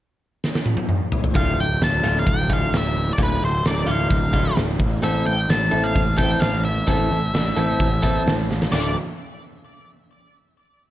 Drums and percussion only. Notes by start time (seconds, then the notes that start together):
0.44 snare
0.55 snare
0.66 high tom
0.77 high tom
0.89 mid tom
1.12 floor tom
1.24 floor tom
1.35 kick, open hi-hat
1.81 snare, open hi-hat
2.05 snare
2.26 kick, open hi-hat
2.50 kick
2.73 snare, open hi-hat
3.18 kick, open hi-hat
3.65 snare, open hi-hat
4.10 kick, open hi-hat
4.34 kick
4.56 snare, open hi-hat
4.80 kick
5.03 open hi-hat
5.49 snare, open hi-hat
5.95 kick, open hi-hat
6.18 kick
6.41 snare, open hi-hat
6.87 kick, open hi-hat
7.34 snare, open hi-hat
7.80 kick, open hi-hat
8.03 kick
8.26 snare, open hi-hat
8.51 snare
8.62 snare
8.72 snare, china